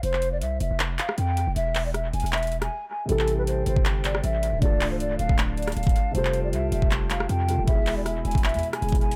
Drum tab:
HH |x-----------x-----------x-----------x-----------x-----------x-----------x-----------x-----------|x-----------o-----------x-----------x---x---x---x--x--x--x--x-----x-----------------------------|x-----------x-----------x-----------x-----------x-----------x-----------x-----------x-----------|x-----------o-----------x-----------x-----------x-----------x--x--x--x--x---x---x---x-----------|
CP |------x-----------------------------------------x-----------x-----------------------------------|------------x-----------------------------------x-----------------------------------------------|------x-----------------------------------------x-----------x-----------------------------------|------------x-----------------------------------x-----------------------------------------------|
SD |------------------------------------------------------------------r-----------------------------|------------------------r-----------------------------------------r-----------------------------|------------------------------------------------------------------r-----------------------------|------------------------------------------------------------------r-----------------------------|
BD |------------------------------------------------------------------------------------------------|------------------------------------------------------------------------------------------------|------------------------------------------o-----------------------------------------------------|o-----------------------------------------o-----------------------------------o-----------------|

HH |x-----------x-----------x-----------x-----------x-----------x-----------x-----------x-----------|x-----------o-----------x-----------x---x---x---x--x--x--x--x-----x-----x---x---x---x-----x-----|
CP |------x-----------------------------------------x-----------x-----------------------------------|------------x-----------------------------------x-----------------------------------------------|
SD |------------------------------------------------------------------r-----------------------------|------------------------r-----------------------------------------r-----------------------------|
BD |------------------------------------------o-----------------------------------------------------|o-----------------------------------------o-----------------------------------o-----------------|